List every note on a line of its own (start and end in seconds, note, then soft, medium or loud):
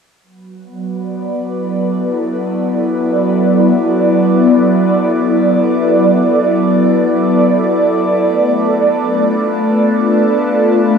0.23 8.23 F#3 medium
0.23 10.98 B3 medium
0.23 10.98 B4 medium
0.64 10.12 B3 loud
0.73 10.98 D5 medium
1.41 8.24 E4 medium
1.56 10.98 A4 medium
8.20 10.98 A3 medium
8.90 10.98 D4 medium
8.90 10.98 F4 medium